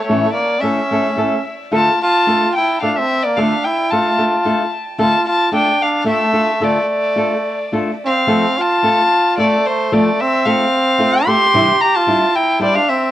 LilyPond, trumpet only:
\new Staff \with { instrumentName = "Trumpet" } { \time 3/4 \key d \minor \tempo 4 = 110 a8 bes8 cis'4. r8 | f'8 f'4 e'8 d'16 c'8 bes16 | d'8 e'8 f'4. r8 | f'8 f'8 d'8 d'8 a4 |
a2 r8 c'8~ | \key f \major c'8 f'4. a8 a8 | a8 c'8 c'4. g'8~ | g'8 g'16 f'8. e'8 g16 d'16 c'8 | }